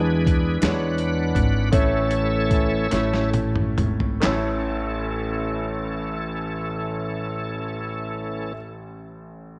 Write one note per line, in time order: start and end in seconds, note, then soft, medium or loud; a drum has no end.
0.00 0.58 E2 medium
0.00 0.58 E3 medium
0.00 0.30 G#3 medium
0.00 0.30 D4 medium
0.00 0.58 D4 medium
0.00 0.30 E4 medium
0.00 0.58 G#4 medium
0.00 0.33 B4 medium
0.00 0.62 B4 medium
0.27 kick medium
0.27 closed hi-hat soft
0.62 1.31 E2 medium
0.62 1.39 G#3 medium
0.62 1.39 D4 soft
0.62 1.69 D4 medium
0.62 1.39 E4 soft
0.62 1.69 B4 medium
0.62 1.39 C#5 medium
0.62 1.77 F#5 medium
0.62 snare loud
0.62 closed hi-hat medium
0.98 closed hi-hat soft
1.35 1.70 G#1 medium
1.35 kick medium
1.35 closed hi-hat soft
1.72 2.87 A1 medium
1.72 2.87 A2 medium
1.72 2.88 E3 soft
1.72 2.54 A3 medium
1.72 2.87 A3 soft
1.72 2.55 C#4 medium
1.72 2.88 C#4 medium
1.72 2.55 E4 medium
1.72 3.30 A4 medium
1.72 2.55 C#5 medium
1.72 3.30 C#5 medium
1.72 3.30 E5 medium
1.72 kick loud
1.72 closed hi-hat medium
2.11 closed hi-hat soft
2.51 kick medium
2.51 closed hi-hat soft
2.91 3.73 A1 medium
2.91 3.81 A3 medium
2.91 3.81 C#4 medium
2.91 3.82 E4 medium
2.91 3.82 C#5 medium
2.91 snare soft
2.91 closed hi-hat medium
3.14 snare soft
3.33 closed hi-hat soft
3.33 high tom medium
3.56 mid tom medium
3.78 4.19 G#1 medium
3.78 closed hi-hat soft
3.78 mid tom medium
4.00 floor tom medium
4.20 8.53 A1 medium
4.20 8.53 E3 medium
4.20 8.50 A3 medium
4.20 8.53 A3 medium
4.20 8.52 C#4 medium
4.20 8.53 C#4 medium
4.20 8.53 E4 medium
4.20 8.53 A4 medium
4.20 snare medium
4.20 clap medium
4.25 8.55 C#5 medium